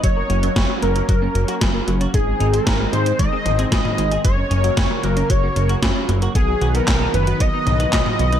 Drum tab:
HH |x-xxx-xxx-xxx-xx|x-xxx-xxx-xxx-xx|x-xxx-xxx-xxx-xx|x-xxx-xxx-xxx-xx|
CP |----------------|----------------|----------------|----x-------x---|
SD |----o-------o---|----o-------o---|----o-------o---|----o-------o---|
T2 |----------------|----------o--o--|----------------|----------o--o--|
BD |o---o---o---o---|o---o---o---o---|o---o---o---o---|o---o---o---o---|